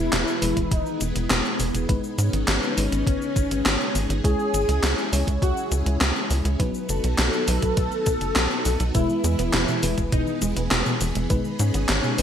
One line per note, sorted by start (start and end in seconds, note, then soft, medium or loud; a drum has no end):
0.00 1.87 E3 medium
0.00 0.38 G#3 medium
0.00 0.38 B3 medium
0.00 4.21 B3 medium
0.00 0.38 E4 medium
0.00 0.73 E4 loud
0.00 1.87 G#4 medium
0.00 0.38 B4 loud
0.13 0.24 E1 loud
0.13 snare loud
0.13 clap loud
0.13 closed hi-hat medium
0.13 shaker soft
0.28 shaker soft
0.42 0.54 E1 medium
0.42 1.86 E3 medium
0.42 1.86 G#3 medium
0.42 1.86 B3 medium
0.42 1.86 B4 loud
0.42 open hi-hat medium
0.42 shaker medium
0.57 0.68 E1 medium
0.57 kick medium
0.57 closed hi-hat medium
0.57 shaker soft
0.71 0.83 E1 loud
0.71 1.02 D#4 medium
0.71 kick loud
0.71 closed hi-hat medium
0.71 shaker soft
0.86 shaker soft
1.01 1.13 E1 loud
1.01 closed hi-hat medium
1.01 shaker medium
1.16 1.27 E1 medium
1.16 closed hi-hat medium
1.16 shaker soft
1.30 1.42 E1 loud
1.30 snare loud
1.30 clap loud
1.30 closed hi-hat loud
1.30 shaker soft
1.45 shaker soft
1.60 1.71 E1 loud
1.60 open hi-hat medium
1.60 shaker medium
1.74 1.86 E1 medium
1.74 closed hi-hat medium
1.74 shaker soft
1.89 2.01 G#1 loud
1.89 2.74 G#3 medium
1.89 2.74 B3 medium
1.89 2.74 D#4 medium
1.89 4.22 D#4 medium
1.89 6.56 G#4 medium
1.89 2.74 B4 loud
1.89 kick loud
1.89 closed hi-hat loud
1.89 shaker soft
2.04 shaker soft
2.18 2.30 G#2 medium
2.18 4.13 C#4 loud
2.18 closed hi-hat medium
2.18 shaker medium
2.33 2.45 G#1 medium
2.33 closed hi-hat medium
2.33 shaker soft
2.48 2.59 G#1 loud
2.48 snare loud
2.48 clap loud
2.48 closed hi-hat medium
2.48 shaker soft
2.63 shaker soft
2.77 2.89 G#1 medium
2.77 4.21 G#3 medium
2.77 4.21 B3 medium
2.77 4.21 D#4 medium
2.77 4.21 B4 loud
2.77 open hi-hat medium
2.77 shaker medium
2.92 3.04 G#1 medium
2.92 closed hi-hat medium
2.92 shaker soft
3.07 3.18 G#1 loud
3.07 kick loud
3.07 closed hi-hat loud
3.07 shaker soft
3.22 shaker soft
3.36 3.48 G#1 loud
3.36 kick loud
3.36 closed hi-hat medium
3.36 shaker medium
3.51 3.62 G#1 medium
3.51 closed hi-hat medium
3.51 shaker soft
3.66 3.77 G#1 loud
3.66 snare loud
3.66 clap loud
3.66 closed hi-hat loud
3.66 shaker soft
3.81 shaker soft
3.95 4.07 G#1 medium
3.95 open hi-hat medium
3.95 shaker medium
4.10 4.21 G#1 medium
4.10 closed hi-hat medium
4.10 shaker soft
4.24 4.36 C#2 loud
4.24 5.09 G#3 medium
4.24 5.09 C#4 medium
4.24 6.58 C#4 medium
4.24 5.09 E4 medium
4.24 6.58 E4 medium
4.24 5.30 G#4 loud
4.24 5.09 C#5 loud
4.24 kick loud
4.24 closed hi-hat loud
4.24 shaker soft
4.39 shaker soft
4.54 4.65 G#1 loud
4.54 closed hi-hat medium
4.54 shaker medium
4.68 4.80 C#2 medium
4.68 closed hi-hat medium
4.68 shaker soft
4.83 4.95 C#2 loud
4.83 snare loud
4.83 clap medium
4.83 closed hi-hat medium
4.83 shaker soft
4.98 shaker soft
5.13 5.24 C#2 medium
5.13 6.56 G#3 medium
5.13 6.56 C#4 medium
5.13 6.56 E4 medium
5.13 6.56 C#5 loud
5.13 open hi-hat medium
5.13 shaker medium
5.27 5.39 C#2 medium
5.27 kick medium
5.27 closed hi-hat medium
5.27 shaker soft
5.42 5.54 C#2 loud
5.42 5.72 F#4 medium
5.42 kick loud
5.42 closed hi-hat medium
5.42 shaker soft
5.57 shaker soft
5.71 5.83 C#2 loud
5.71 closed hi-hat medium
5.71 shaker medium
5.86 5.98 C#2 medium
5.86 closed hi-hat medium
5.86 shaker soft
6.01 6.12 C#2 loud
6.01 snare loud
6.01 clap loud
6.01 closed hi-hat medium
6.01 shaker soft
6.16 shaker soft
6.30 6.42 C#2 loud
6.30 open hi-hat medium
6.30 shaker medium
6.45 6.57 C#2 medium
6.45 closed hi-hat medium
6.45 shaker soft
6.60 6.71 B1 loud
6.60 7.44 F#3 medium
6.60 12.22 B3 medium
6.60 7.44 B3 medium
6.60 7.44 D#4 medium
6.60 8.93 D#4 medium
6.60 8.93 F#4 medium
6.60 7.44 B4 loud
6.60 kick loud
6.60 closed hi-hat medium
6.60 shaker soft
6.74 shaker soft
6.89 7.01 F#1 loud
6.89 8.83 A4 loud
6.89 closed hi-hat medium
6.89 shaker medium
7.04 7.15 B1 medium
7.04 closed hi-hat medium
7.04 shaker soft
7.18 7.30 B1 loud
7.18 snare loud
7.18 clap medium
7.18 closed hi-hat medium
7.18 shaker soft
7.33 shaker soft
7.48 7.59 B1 medium
7.48 8.92 F#3 medium
7.48 8.92 B3 medium
7.48 8.92 D#4 medium
7.48 8.92 B4 loud
7.48 open hi-hat medium
7.48 shaker medium
7.62 7.74 B1 medium
7.62 kick medium
7.62 closed hi-hat medium
7.62 shaker soft
7.77 7.89 B1 loud
7.77 kick loud
7.77 closed hi-hat medium
7.77 shaker soft
7.92 shaker soft
8.06 8.18 B1 loud
8.06 kick loud
8.06 closed hi-hat medium
8.06 shaker medium
8.21 8.33 F#1 medium
8.21 closed hi-hat medium
8.21 shaker soft
8.36 8.48 B1 loud
8.36 snare loud
8.36 clap medium
8.36 closed hi-hat medium
8.36 shaker soft
8.51 shaker soft
8.65 8.77 B1 medium
8.65 open hi-hat medium
8.65 shaker medium
8.80 8.92 B1 medium
8.80 closed hi-hat medium
8.80 shaker soft
8.95 9.07 E1 loud
8.95 9.09 B2 loud
8.95 11.28 E3 medium
8.95 9.80 G#3 medium
8.95 9.80 B3 medium
8.95 9.80 E4 medium
8.95 10.01 E4 loud
8.95 12.22 G#4 medium
8.95 9.80 B4 loud
8.95 kick loud
8.95 closed hi-hat medium
8.95 shaker soft
9.09 9.23 E3 medium
9.09 shaker soft
9.24 9.36 E2 medium
9.24 9.33 G#3 loud
9.24 closed hi-hat medium
9.24 shaker medium
9.39 9.51 E1 medium
9.39 9.44 B3 loud
9.39 closed hi-hat medium
9.39 shaker soft
9.53 9.65 E1 loud
9.53 9.67 E4 medium
9.53 snare loud
9.53 clap medium
9.53 closed hi-hat medium
9.53 shaker soft
9.68 9.74 B2 loud
9.68 shaker soft
9.83 9.95 E1 medium
9.83 11.27 E3 medium
9.83 9.97 E3 medium
9.83 11.27 G#3 medium
9.83 11.27 B3 medium
9.83 11.27 B4 loud
9.83 open hi-hat medium
9.83 shaker medium
9.97 10.09 E1 medium
9.97 10.03 G#3 medium
9.97 kick medium
9.97 closed hi-hat medium
9.97 shaker soft
10.12 10.24 E1 loud
10.12 10.26 B2 loud
10.12 10.43 D#4 medium
10.12 kick loud
10.12 closed hi-hat medium
10.12 shaker soft
10.27 10.41 E3 medium
10.27 shaker soft
10.42 10.54 E1 medium
10.42 10.51 G#3 loud
10.42 closed hi-hat medium
10.42 shaker medium
10.57 10.68 E1 medium
10.57 10.62 B3 loud
10.57 closed hi-hat medium
10.57 shaker soft
10.71 10.83 E1 loud
10.71 10.85 E4 medium
10.71 snare loud
10.71 clap medium
10.71 closed hi-hat medium
10.71 shaker soft
10.86 10.92 B2 loud
10.86 shaker soft
11.01 11.12 E1 medium
11.01 11.14 E3 medium
11.01 open hi-hat medium
11.01 shaker medium
11.15 11.27 E1 medium
11.15 11.21 G#3 medium
11.15 closed hi-hat medium
11.15 shaker soft
11.30 11.42 G#1 loud
11.30 11.44 B2 loud
11.30 12.15 G#3 medium
11.30 12.15 B3 medium
11.30 12.15 D#4 medium
11.30 12.22 D#4 medium
11.30 12.15 B4 loud
11.30 kick loud
11.30 closed hi-hat medium
11.30 shaker soft
11.45 11.59 D#3 medium
11.45 shaker soft
11.59 11.71 G#2 medium
11.59 11.69 G#3 loud
11.59 12.22 C#4 loud
11.59 closed hi-hat medium
11.59 shaker medium
11.74 11.86 G#1 medium
11.74 11.80 B3 loud
11.74 closed hi-hat medium
11.74 shaker soft
11.89 12.01 G#1 loud
11.89 12.03 D#4 medium
11.89 snare loud
11.89 clap medium
11.89 closed hi-hat medium
11.89 shaker soft
12.04 12.09 B2 loud
12.04 shaker soft
12.18 12.22 G#1 loud
12.18 12.22 D#3 medium
12.18 12.22 G#3 medium
12.18 12.22 B3 medium
12.18 12.22 D#4 medium
12.18 12.22 B4 loud
12.18 open hi-hat medium
12.18 shaker medium